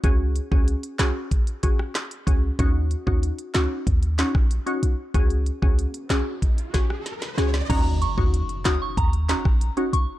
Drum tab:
CC |----------------|----------------|----------------|x---------------|
HH |x-x-xxx-xxx-xxx-|x-x-xxx-xxx-xxx-|xxx-xxx-xxx-xxx-|x-x-xxx-xxx-xxx-|
CP |------x-----x---|------x---x-----|------x---------|------x---x-----|
SD |------o----ro---|------o---or----|------o---oroooo|------o---or----|
BD |o--o----o-o---o-|o--o----o--o----|o--o----o-o-----|o--o----o--o----|